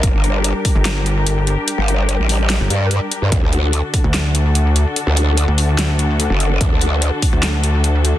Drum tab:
HH |xxxoxxxx|xxxoxxxx|xxxoxxxx|xxxoxxxx|
CP |----x---|----x---|----x---|----x---|
SD |----o---|----o---|----o---|----o---|
BD |o--o----|--------|o--o----|--------|

HH |xxxoxxxx|
CP |----x---|
SD |----o---|
BD |o--o----|